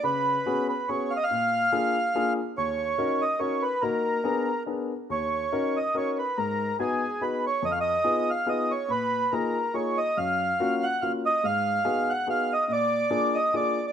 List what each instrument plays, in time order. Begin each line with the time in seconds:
0.04 upright piano C#3, accordion B4
0.46 upright piano B3 C#4 F#4 G#4
0.69 accordion B4
0.89 upright piano B3 C#4 F#4 G#4, accordion C#5
1.11 accordion F5
1.17 accordion D#5
1.23 accordion F5
1.31 upright piano A#2
1.72 upright piano A#3 D4 F4 G#4
2.15 upright piano A#3 D4 F4 G#4
2.57 upright piano D#2, accordion C#5
2.98 upright piano C#4 D#4 F#4 A#4
3.22 accordion D#5
3.40 upright piano C#4 D#4 F#4 A#4, accordion C#5
3.62 accordion B4
3.81 upright piano A#3 D#4 F#4 A#4, accordion A#4
4.24 upright piano B3 D4 G#4 A#4
4.66 upright piano B3 D4 G#4 A#4
5.10 upright piano D#2, accordion C#5
5.52 upright piano C#4 D#4 F#4 A#4
5.77 accordion D#5
5.95 upright piano C#4 D#4 F#4 A#4, accordion C#5
6.18 accordion B4
6.38 upright piano G#2, accordion A#4
6.80 upright piano B3 D#4 F#4 G#4, accordion G#4
7.21 upright piano B3 D#4 F#4 G#4, accordion B4
7.47 accordion C#5
7.62 upright piano F2, accordion D#5
7.72 accordion F5
7.81 accordion D#5
8.04 upright piano B3 D#4 F4 G#4
8.30 accordion F5
8.46 upright piano B3 D#4 F4 G#4, accordion D#5
8.71 accordion C#5
8.88 upright piano A#2, accordion B4
9.31 upright piano A#3 D#4 F4 G#4, accordion A#4
9.74 upright piano A#3 D#4 F4 G#4, accordion C#5
9.98 accordion D#5
10.18 upright piano F#2, accordion F5
10.60 upright piano A#3 C#4 F4 F#4
10.83 accordion F#5
11.02 upright piano A#3 C#4 F4 F#4, accordion F5
11.26 accordion D#5
11.44 upright piano G#2, accordion F5
11.85 upright piano B3 D#4 F#4 G#4
12.10 accordion F#5
12.27 upright piano B3 D#4 F#4 G#4, accordion F5
12.53 accordion D#5
12.68 upright piano A#2
12.73 accordion D5
13.10 upright piano A#3 D4 F4 G#4
13.35 accordion D#5
13.53 upright piano A#3 D4 F4 G#4, accordion D5
13.87 accordion D5